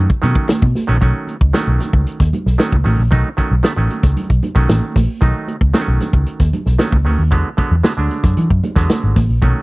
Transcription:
0.10 kick
0.22 picked electric bass B2, clav D#3 F#3 A3 C#4, closed hi-hat, muted conga, low conga
0.35 kick
0.49 snare, clap, closed hi-hat, high conga
0.62 picked electric bass B2, kick
0.75 snare, open hi-hat, high conga
0.87 picked electric bass A#1, clav D#3 F#3 A3 C#4
1.01 picked electric bass B1, clav D#3 F#3 A3 C#4, kick, closed hi-hat
1.27 closed hi-hat, muted conga
1.41 picked electric bass C#2, kick
1.53 clav D#3 F#3 A3 C#4, snare, closed hi-hat, high conga
1.68 picked electric bass B1
1.80 snare, closed hi-hat, muted conga, low conga
1.93 picked electric bass C#2, kick
2.07 closed hi-hat
2.20 picked electric bass D#2, kick, snare, closed hi-hat
2.33 closed hi-hat, muted conga, low conga
2.46 picked electric bass B1, snare
2.58 clav D#3 F#3 A3 C#4, snare, closed hi-hat, high conga
2.72 picked electric bass C#2, kick
2.84 picked electric bass A1, clav D#3 F#3 A3 C#4, open hi-hat, high conga
2.98 picked electric bass A#1
3.11 picked electric bass B1, clav D#3 F#3 A3 D#4, kick, closed hi-hat
3.37 clav D#3 F#3 A3 C#4, kick, closed hi-hat
3.51 picked electric bass B1
3.63 clav D#3 F#3 A3 B3, snare, closed hi-hat, high conga
3.77 picked electric bass A1, clav D#3 F#3 A3 C#4
3.90 closed hi-hat, muted conga
4.03 picked electric bass C#2, kick, snare
4.17 closed hi-hat, low conga
4.30 picked electric bass B1, kick, closed hi-hat
4.43 closed hi-hat, muted conga, low conga
4.55 picked electric bass B1, clav D#3 F#3 A3 C#4, kick
4.69 picked electric bass A1, snare, closed hi-hat, high conga
4.96 picked electric bass A#1, kick, snare, open hi-hat, high conga
5.21 picked electric bass B1, clav D#3 F#3 A3 D#4, kick, closed hi-hat
5.48 closed hi-hat, muted conga
5.61 picked electric bass C#2, kick
5.74 clav D#3 F#3 A3 C4, snare, closed hi-hat, high conga
5.81 clav C#4
5.88 picked electric bass B1
6.00 snare, closed hi-hat, muted conga, low conga
6.13 picked electric bass C#2, kick, closed hi-hat
6.26 closed hi-hat
6.40 picked electric bass D#2, kick, snare
6.53 closed hi-hat, muted conga, low conga
6.66 picked electric bass B1, snare
6.78 clav D#3 F#3 A3 C#4, snare, closed hi-hat, high conga
6.92 picked electric bass C#2, kick
7.05 picked electric bass D2, clav D#3 F#3 A3 C#4, open hi-hat, high conga
7.19 picked electric bass D#2
7.31 picked electric bass E2, clav D3 F#3 G#3 B3, kick, closed hi-hat
7.57 clav D3 F#3 G#3 B3, kick, closed hi-hat, muted conga
7.72 picked electric bass E2
7.83 clav D3 F#3 G#3 B3, snare, closed hi-hat, high conga
7.97 picked electric bass D2, clav D3 F#3 G#3 D4
8.11 closed hi-hat, muted conga
8.23 picked electric bass F#2, kick, snare, closed hi-hat
8.37 picked electric bass E3, closed hi-hat, low conga
8.50 picked electric bass F#2, kick
8.64 closed hi-hat, muted conga, low conga
8.76 picked electric bass E2, clav D3 F#3 G#3 B3, kick, snare
8.89 snare, closed hi-hat, high conga
9.03 picked electric bass G#1, high conga
9.16 picked electric bass A1, kick, snare, open hi-hat, high conga
9.29 picked electric bass A#1
9.42 picked electric bass B1, clav D#3 F#3 A3 C#4, kick, closed hi-hat

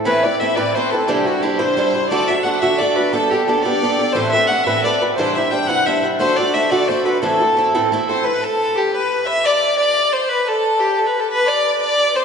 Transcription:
0.05 steel-string acoustic guitar A2 E3 A3 C4 E4 B4, fiddle B4
0.23 steel-string acoustic guitar A3 C4 E4 B4, fiddle D5
0.40 steel-string acoustic guitar A3 C4 E4 B4, fiddle E5
0.55 steel-string acoustic guitar A2 E3 A3 C4 E4 B4, fiddle D5
0.75 steel-string acoustic guitar A3 C4 E4 B4, fiddle C5
0.90 steel-string acoustic guitar A3 C4 E4 B4, fiddle A4
1.07 steel-string acoustic guitar C3 E3 G3 D4 E4 C5, fiddle G4
1.25 steel-string acoustic guitar G3 D4 E4 C5, fiddle F#4
1.41 steel-string acoustic guitar G3 D4 E4 C5, fiddle G4
1.58 steel-string acoustic guitar C3 E3 G3 D4 E4 C5, fiddle C5
1.77 steel-string acoustic guitar G3 D4 E4 C5
1.94 steel-string acoustic guitar G3 D4 E4 C5
2.09 steel-string acoustic guitar D3 A3 D4 F#4 A4, fiddle D5
2.28 steel-string acoustic guitar D4 F#4 A4, fiddle E5
2.43 steel-string acoustic guitar A3 D4 F#4 A4, fiddle F#5
2.61 steel-string acoustic guitar D3 A3 D4 F#4 A4, fiddle E5
2.78 steel-string acoustic guitar A3 D4 F#4 A4, fiddle D5
2.96 steel-string acoustic guitar D4 F#4 A4, fiddle B4
3.12 steel-string acoustic guitar G3 B3 D4 G4 A4, fiddle A4
3.31 steel-string acoustic guitar D4 G4 A4, fiddle G4
3.47 steel-string acoustic guitar B3 D4 G4 A4, fiddle A4
3.62 steel-string acoustic guitar B3 D4 G4 A4, fiddle D5
3.66 steel-string acoustic guitar G3
3.82 steel-string acoustic guitar B3 D4 G4 A4
3.99 steel-string acoustic guitar D4 G4 A4
4.13 steel-string acoustic guitar A2 E3 A3 C4 A4 B4, fiddle C5
4.31 steel-string acoustic guitar C4 A4 B4, fiddle E5
4.35 steel-string acoustic guitar A3
4.47 steel-string acoustic guitar A3 C4, fiddle F#5
4.51 steel-string acoustic guitar A4 B4
4.64 steel-string acoustic guitar A2 E3 A3 C4 A4 B4, fiddle E5
4.81 steel-string acoustic guitar A3 C4, fiddle D5 E5
4.85 steel-string acoustic guitar A4 B4
5.02 steel-string acoustic guitar A3 C4 A4 B4
5.15 steel-string acoustic guitar C3 E3 G3 D4 E4 C5, fiddle C5
5.34 steel-string acoustic guitar D4 E4 C5, fiddle E5
5.39 steel-string acoustic guitar G3
5.51 steel-string acoustic guitar G3 D4 E4 C5, fiddle G5
5.67 steel-string acoustic guitar C3 E3 G3 D4 E4 C5, fiddle F#5
5.86 steel-string acoustic guitar G3 D4 E4 C5, fiddle E5
6.03 steel-string acoustic guitar G3 D4 E4 C5
6.19 steel-string acoustic guitar D3 A3 D4 F#4 A4, fiddle C5
6.36 steel-string acoustic guitar D4 F#4 A4, fiddle D5
6.54 steel-string acoustic guitar A3 D4 F#4 A4, fiddle E5
6.70 steel-string acoustic guitar D3 A3 D4 F#4 A4, fiddle D5
6.88 steel-string acoustic guitar A3 D4 F#4 A4, fiddle C5
7.05 steel-string acoustic guitar D4 F#4 A4, fiddle B4
7.22 steel-string acoustic guitar A2 E3 A3 C4 E4 A4, fiddle A4
7.40 steel-string acoustic guitar A3 C4 E4 A4
7.57 steel-string acoustic guitar A3 C4 E4 A4
7.75 steel-string acoustic guitar A2 E3 A3 C4 E4 A4
7.92 steel-string acoustic guitar A3 C4 E4 A4
8.08 steel-string acoustic guitar A3 C4 E4 A4, fiddle C5
8.24 fiddle B4
8.41 fiddle A4
8.58 fiddle A4
8.75 fiddle G4
8.93 fiddle B4
9.25 fiddle E5
9.44 fiddle D5
9.76 fiddle D5
10.12 fiddle C5
10.29 fiddle B4
10.46 fiddle A4
10.79 fiddle G4
10.96 fiddle A4
11.06 fiddle B4
11.18 fiddle A4
11.29 fiddle B4
11.46 fiddle D5
11.79 fiddle D5
12.13 fiddle C5

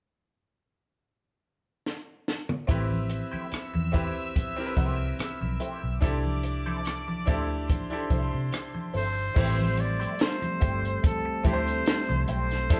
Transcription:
1.86 snare
2.28 snare
2.49 mid tom
2.67 fingered electric bass A1, clean electric guitar A3 E4 G4 C5, grand piano C4 E4 G4 B4, string section E5 E6, kick, closed hi-hat
2.91 high conga
3.10 muted clean electric guitar stroke, closed hi-hat
3.32 clean electric guitar A3 E4 G4 C5, muted fingered electric bass stroke, high conga
3.51 muted clean electric guitar stroke, muted fingered electric bass stroke, cross-stick, closed hi-hat, muted conga
3.74 fingered electric bass E2, muted clean electric guitar stroke, muted conga, high conga
3.92 clean electric guitar A3 E4 G4 C5, grand piano C4 E4 G4 B4, kick, closed hi-hat
4.35 muted clean electric guitar stroke, kick, closed hi-hat, high conga, low conga
4.56 grand piano C4 E4 G4 A#4, muted clean electric guitar stroke, muted conga
4.66 grand piano B4
4.77 fingered electric bass C2, clean electric guitar A3 E4 G4 C5, kick, closed hi-hat, high conga
4.99 muted clean electric guitar stroke
5.18 muted clean electric guitar stroke, muted fingered electric bass stroke, cross-stick, closed hi-hat, muted conga
5.41 fingered electric bass B1, muted clean electric guitar stroke, high conga, low conga
5.60 clean electric guitar A3 E4 G4 C5, closed hi-hat
5.83 fingered electric bass B1, muted clean electric guitar stroke
6.01 fingered electric bass C2, clean electric guitar C4 E4 A4 C5, grand piano D4 E4 G4 A4, string section D5 D6, kick, closed hi-hat
6.25 high conga
6.43 muted clean electric guitar stroke, closed hi-hat
6.66 clean electric guitar C4 E4 A4 C5, high conga
6.85 muted clean electric guitar stroke, cross-stick, closed hi-hat, muted conga
7.08 muted clean electric guitar stroke, muted conga, high conga
7.26 fingered electric bass D2, clean electric guitar C4 E4 A4 C5, grand piano D4 E4 G4 A4, kick, closed hi-hat
7.50 muted clean electric guitar stroke
7.69 string section C5 C6, muted clean electric guitar stroke, kick, closed hi-hat, muted conga, high conga, low conga
7.90 grand piano D4 E4 G4 A4, muted clean electric guitar stroke, muted conga
8.10 fingered electric bass C2, clean electric guitar C4 E4 A4 C5, kick, closed hi-hat, high conga
8.33 fingered electric bass C3, muted clean electric guitar stroke
8.52 muted clean electric guitar stroke, cross-stick, closed hi-hat, muted conga
8.75 muted clean electric guitar stroke, muted conga, high conga, low conga
8.94 fingered electric bass G1, clean electric guitar C4 E4 A4 C5, flugelhorn C5, open hi-hat
9.17 muted clean electric guitar stroke
9.34 fingered electric bass A1, french horn section G3 A3 C4, clean electric guitar A3 E4 G4 C5, grand piano C4 E4 G4 C5, kick, crash, muted conga
9.59 muted conga, high conga
9.77 flugelhorn D5, muted clean electric guitar stroke, closed hi-hat
10.00 clean electric guitar A3 E4 G4 C5, closed hi-hat, high conga
10.19 flugelhorn C5, muted clean electric guitar stroke, snare, closed hi-hat
10.42 muted clean electric guitar stroke, closed hi-hat, high conga, low conga
10.60 fingered electric bass G1, clean electric guitar A3 E4 G4 C5, kick, closed hi-hat
10.84 muted clean electric guitar stroke, closed hi-hat
11.03 flugelhorn A4, muted clean electric guitar stroke, kick, closed hi-hat, high conga, low conga
11.25 muted clean electric guitar stroke
11.43 fingered electric bass D2, clean electric guitar A3 E4 G4 C5, grand piano C4 E4 G4 A4, kick, closed hi-hat, high conga
11.48 flugelhorn C5
11.53 grand piano C5
11.67 muted clean electric guitar stroke, closed hi-hat
11.86 muted clean electric guitar stroke, snare, closed hi-hat
12.09 fingered electric bass C2, muted clean electric guitar stroke, closed hi-hat, high conga, low conga
12.28 fingered electric bass B1, clean electric guitar A3 E4 G4 C5, flugelhorn C5, closed hi-hat
12.50 muted clean electric guitar stroke, snare, closed hi-hat
12.69 fingered electric bass C2, french horn section G3 A3 C4 E4, clean electric guitar C4 E4 A4 C5, grand piano D4 E4 G4 A4, kick, closed hi-hat

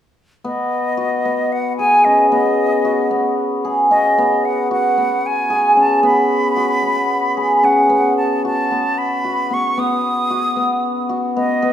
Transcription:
0.44 hammered dulcimer B3, flute D#5
0.97 hammered dulcimer F#4
1.25 hammered dulcimer B3
1.52 flute F#5
1.78 hammered dulcimer G#4, flute G#5
2.04 hammered dulcimer C#4, flute D#5
2.31 hammered dulcimer B3, flute D#5
2.85 hammered dulcimer F#4
3.11 hammered dulcimer B3
3.65 hammered dulcimer G#4
3.91 hammered dulcimer C#4, flute D#5
4.18 hammered dulcimer B3
4.45 flute F#5
4.71 hammered dulcimer F#4, flute F#5
4.97 hammered dulcimer B3
5.26 flute G#5
5.50 hammered dulcimer G#4
5.77 hammered dulcimer C#4, flute A5
6.03 hammered dulcimer B3, flute B5
6.56 hammered dulcimer F#4
6.83 hammered dulcimer B3
7.37 hammered dulcimer G#4
7.63 hammered dulcimer C#4, flute F#5
7.89 hammered dulcimer B3
8.17 flute A5
8.45 hammered dulcimer F#4, flute A5
8.71 hammered dulcimer B3
8.98 flute B5
9.24 hammered dulcimer F#4
9.51 hammered dulcimer B3, flute C#6
9.77 hammered dulcimer B3, flute D#6
10.30 hammered dulcimer F#4
10.56 hammered dulcimer B3
11.09 hammered dulcimer F#4
11.36 hammered dulcimer B3, flute D#5
11.62 hammered dulcimer B3

